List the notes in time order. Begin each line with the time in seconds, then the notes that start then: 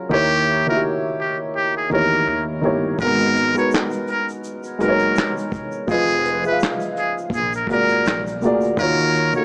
Already playing: F#3 C#4 F4 G#4 C#5
0.09 D#2 D#3 A#3 E4 G4 C#5
0.66 D#3 A#3 E4 F#4 A#4 E5
0.76 G4
1.20 G4
1.56 G4
1.77 G#4
1.90 E2 D#3 A#3 E4 G4 A#4 C#5
2.27 D#2
2.61 G1 D#3 A#3 E4 G4 C#5
2.99 G#1 G#3 D#4 F#4 A#4, kick, shaker
3.03 B3
3.19 shaker
3.21 shaker
3.36 closed hi-hat, shaker
3.54 G#3 D#4 F#4 A#4, shaker
3.57 B4 C#5, shaker
3.71 shaker
3.74 snare, clap, shaker
3.91 shaker
3.93 shaker
4.08 A#4, closed hi-hat, shaker
4.29 shaker
4.44 shaker
4.63 shaker
4.65 shaker
4.79 F#1 G#3 D#4 F#4 A#4 B4, closed hi-hat, shaker
4.89 C#5
4.99 shaker
5.15 shaker
5.18 snare, clap, shaker
5.37 shaker
5.39 shaker
5.52 kick, closed hi-hat, shaker
5.54 shaker
5.72 shaker
5.87 F1 F3 F4 G#4 B4 D#5, kick, shaker
6.08 shaker
6.10 shaker
6.25 closed hi-hat, shaker
6.42 F3 F4 G#4 B4 E5, shaker
6.47 B4
6.52 F5
6.60 shaker
6.62 snare, clap, shaker
6.80 shaker
6.82 shaker
6.97 G#4, closed hi-hat, shaker
7.18 shaker
7.30 A#1, kick, shaker
7.35 G#4
7.53 A#4, shaker
7.67 G#1 A#2 A#3 F#4 G#4, kick, closed hi-hat, shaker
7.71 A#4 D5
7.89 shaker
8.05 A#1, shaker
8.07 snare, clap, shaker
8.26 shaker
8.41 D2 A#2 A#3, closed hi-hat, shaker
8.43 F#4 G#4 D5, shaker
8.61 shaker
8.64 shaker
8.77 D#2 D#3 A#3 F4 F#4 A#4 C#5, kick, shaker
8.97 shaker
8.99 shaker
9.15 closed hi-hat, shaker
9.33 D#3 A#3 F4 F#4 A4 C#5, shaker